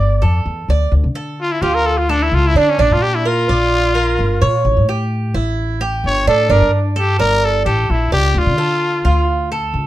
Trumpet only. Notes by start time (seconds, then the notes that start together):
Already playing: D5
1.42 F4
1.52 E4
1.62 G4
1.75 A#4
1.86 A4
1.98 F4
2.10 D4
2.23 E4
2.34 F4
2.47 E4
2.58 D4
2.70 C#4
2.81 D4
2.93 F4
3.02 G4
3.15 E4
3.27 F4
6.07 C#5
6.29 A4
6.51 A#4
6.74 D4
6.98 G4
7.19 A#4
7.45 A4
7.65 G4
7.91 E4
8.13 G4
8.38 F4